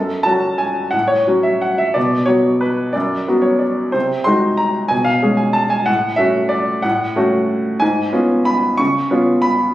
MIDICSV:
0, 0, Header, 1, 2, 480
1, 0, Start_track
1, 0, Key_signature, 3, "minor"
1, 0, Tempo, 341686
1, 1311, Time_signature, 3, 2, 24, 8
1, 2281, Tempo, 332226
1, 5641, Tempo, 321199
1, 11881, Tempo, 328767
1, 14243, End_track
2, 0, Start_track
2, 0, Title_t, "Upright piano"
2, 0, Program_c, 0, 0
2, 0, Note_on_c, 0, 42, 39
2, 0, Note_on_c, 0, 69, 52
2, 98, Control_c, 0, 64, 127
2, 326, Note_on_c, 0, 81, 67
2, 354, Note_off_c, 0, 42, 0
2, 354, Note_off_c, 0, 69, 0
2, 356, Note_on_c, 0, 61, 34
2, 359, Note_on_c, 0, 54, 36
2, 366, Note_on_c, 0, 66, 39
2, 817, Note_on_c, 0, 80, 57
2, 823, Note_off_c, 0, 81, 0
2, 1249, Note_off_c, 0, 61, 0
2, 1250, Note_off_c, 0, 54, 0
2, 1254, Note_off_c, 0, 66, 0
2, 1273, Note_on_c, 0, 78, 60
2, 1297, Note_off_c, 0, 80, 0
2, 1301, Note_on_c, 0, 45, 38
2, 1340, Control_c, 0, 64, 0
2, 1511, Note_on_c, 0, 73, 64
2, 1528, Note_off_c, 0, 78, 0
2, 1567, Control_c, 0, 64, 127
2, 1770, Note_off_c, 0, 45, 0
2, 1788, Note_on_c, 0, 54, 35
2, 1794, Note_on_c, 0, 66, 38
2, 1797, Note_on_c, 0, 61, 36
2, 2011, Note_on_c, 0, 76, 55
2, 2018, Note_off_c, 0, 73, 0
2, 2268, Note_off_c, 0, 76, 0
2, 2269, Note_on_c, 0, 78, 52
2, 2508, Note_on_c, 0, 76, 62
2, 2520, Note_off_c, 0, 78, 0
2, 2702, Note_off_c, 0, 54, 0
2, 2705, Note_off_c, 0, 66, 0
2, 2706, Note_off_c, 0, 61, 0
2, 2738, Note_on_c, 0, 74, 61
2, 2751, Note_off_c, 0, 76, 0
2, 2768, Note_on_c, 0, 47, 40
2, 2788, Control_c, 0, 64, 0
2, 3011, Control_c, 0, 64, 127
2, 3196, Note_on_c, 0, 73, 64
2, 3214, Note_off_c, 0, 74, 0
2, 3215, Note_off_c, 0, 47, 0
2, 3220, Note_on_c, 0, 54, 35
2, 3226, Note_on_c, 0, 59, 33
2, 3238, Note_on_c, 0, 66, 38
2, 3700, Note_off_c, 0, 73, 0
2, 3701, Note_on_c, 0, 71, 58
2, 4129, Note_off_c, 0, 54, 0
2, 4132, Note_off_c, 0, 59, 0
2, 4138, Note_off_c, 0, 66, 0
2, 4166, Note_on_c, 0, 74, 57
2, 4183, Note_off_c, 0, 71, 0
2, 4197, Note_on_c, 0, 42, 46
2, 4218, Control_c, 0, 64, 0
2, 4453, Control_c, 0, 64, 127
2, 4651, Note_off_c, 0, 74, 0
2, 4653, Note_off_c, 0, 42, 0
2, 4669, Note_on_c, 0, 54, 36
2, 4677, Note_on_c, 0, 59, 37
2, 4683, Note_on_c, 0, 66, 39
2, 4873, Note_on_c, 0, 73, 52
2, 5119, Note_on_c, 0, 74, 45
2, 5142, Note_off_c, 0, 73, 0
2, 5585, Note_off_c, 0, 54, 0
2, 5589, Note_off_c, 0, 59, 0
2, 5592, Note_off_c, 0, 66, 0
2, 5602, Note_on_c, 0, 72, 57
2, 5619, Note_off_c, 0, 74, 0
2, 5628, Note_on_c, 0, 48, 41
2, 5664, Control_c, 0, 64, 0
2, 5858, Control_c, 0, 64, 127
2, 6079, Note_on_c, 0, 84, 70
2, 6099, Note_off_c, 0, 48, 0
2, 6101, Note_off_c, 0, 72, 0
2, 6107, Note_on_c, 0, 56, 35
2, 6122, Note_on_c, 0, 63, 39
2, 6126, Note_on_c, 0, 66, 42
2, 6574, Note_on_c, 0, 82, 63
2, 6585, Note_off_c, 0, 84, 0
2, 7010, Note_off_c, 0, 56, 0
2, 7017, Note_off_c, 0, 63, 0
2, 7019, Note_off_c, 0, 66, 0
2, 7038, Note_on_c, 0, 80, 72
2, 7061, Note_off_c, 0, 82, 0
2, 7071, Note_on_c, 0, 47, 40
2, 7102, Control_c, 0, 64, 0
2, 7279, Note_on_c, 0, 77, 65
2, 7290, Control_c, 0, 64, 127
2, 7293, Note_off_c, 0, 80, 0
2, 7535, Note_off_c, 0, 47, 0
2, 7543, Note_on_c, 0, 61, 38
2, 7544, Note_on_c, 0, 56, 39
2, 7558, Note_on_c, 0, 68, 41
2, 7763, Note_on_c, 0, 80, 53
2, 7778, Note_off_c, 0, 77, 0
2, 8006, Note_on_c, 0, 81, 67
2, 8027, Note_off_c, 0, 80, 0
2, 8256, Note_on_c, 0, 80, 66
2, 8272, Note_off_c, 0, 81, 0
2, 8461, Note_off_c, 0, 61, 0
2, 8462, Note_off_c, 0, 56, 0
2, 8469, Note_off_c, 0, 68, 0
2, 8492, Note_on_c, 0, 78, 69
2, 8508, Note_off_c, 0, 80, 0
2, 8519, Note_on_c, 0, 45, 48
2, 8552, Control_c, 0, 64, 0
2, 8801, Control_c, 0, 64, 127
2, 8948, Note_on_c, 0, 76, 69
2, 8967, Note_off_c, 0, 45, 0
2, 8968, Note_off_c, 0, 78, 0
2, 8971, Note_on_c, 0, 57, 40
2, 8981, Note_on_c, 0, 66, 43
2, 8985, Note_on_c, 0, 61, 38
2, 9436, Note_on_c, 0, 74, 62
2, 9456, Note_off_c, 0, 76, 0
2, 9893, Note_off_c, 0, 57, 0
2, 9898, Note_off_c, 0, 66, 0
2, 9900, Note_off_c, 0, 61, 0
2, 9938, Note_on_c, 0, 78, 60
2, 9940, Note_off_c, 0, 74, 0
2, 9963, Note_on_c, 0, 45, 53
2, 9989, Control_c, 0, 64, 0
2, 10223, Control_c, 0, 64, 127
2, 10426, Note_off_c, 0, 45, 0
2, 10428, Note_off_c, 0, 78, 0
2, 10441, Note_on_c, 0, 57, 44
2, 10442, Note_on_c, 0, 61, 42
2, 10451, Note_on_c, 0, 66, 43
2, 11354, Note_off_c, 0, 57, 0
2, 11355, Note_off_c, 0, 61, 0
2, 11359, Note_off_c, 0, 66, 0
2, 11390, Note_on_c, 0, 80, 72
2, 11420, Note_on_c, 0, 44, 54
2, 11438, Control_c, 0, 64, 0
2, 11684, Control_c, 0, 64, 127
2, 11872, Note_off_c, 0, 44, 0
2, 11882, Note_on_c, 0, 59, 45
2, 11883, Note_on_c, 0, 61, 43
2, 11893, Note_on_c, 0, 65, 46
2, 12360, Note_on_c, 0, 83, 71
2, 12369, Note_off_c, 0, 80, 0
2, 12801, Note_off_c, 0, 59, 0
2, 12802, Note_off_c, 0, 61, 0
2, 12807, Note_off_c, 0, 65, 0
2, 12830, Note_on_c, 0, 85, 75
2, 12849, Note_off_c, 0, 83, 0
2, 12857, Note_on_c, 0, 49, 50
2, 12887, Control_c, 0, 64, 0
2, 13090, Control_c, 0, 64, 127
2, 13305, Note_off_c, 0, 49, 0
2, 13318, Note_on_c, 0, 59, 45
2, 13318, Note_on_c, 0, 61, 44
2, 13331, Note_on_c, 0, 65, 49
2, 13766, Note_on_c, 0, 83, 71
2, 13789, Note_off_c, 0, 85, 0
2, 14219, Note_off_c, 0, 59, 0
2, 14219, Note_off_c, 0, 61, 0
2, 14226, Note_off_c, 0, 65, 0
2, 14243, Note_off_c, 0, 83, 0
2, 14243, End_track
0, 0, End_of_file